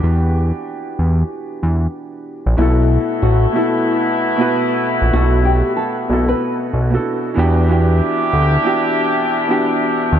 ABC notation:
X:1
M:4/4
L:1/16
Q:"Swing 16ths" 1/4=94
K:Bphr
V:1 name="Nylon-string guitar"
z16 | E4 F2 E8- E2 | F2 G2 A3 B6 z3 | z16 |]
V:2 name="Upright piano"
z16 | [B,,B,EFA]4 z2 [B,,B,EFA]3 z2 [B,,B,EFB]3 z2 | [B,,B,EAf]4 z2 [B,,B,EFA]3 z2 [B,,B,DEFA]3 [E,B,DFG]2 | [E,B,DFG]4 z2 [E,B,DFG]3 z2 [E,B,DFG]3 z2 |]
V:3 name="Horn section"
z16 | [A,B,E]16- | [A,B,E]12 z2 [DEG]2- | [DEG]16 |]
V:4 name="Analog synth bass" clef=bass
E,,4 z2 E,,2 z2 E,,2 z3 ^A,,, | B,,,3 z A,,,2 z8 z ^A,,, | B,,,4 z2 B,,,2 z2 B,,,2 z2 E,,2- | E,,3 z D,,2 z8 z ^D,, |]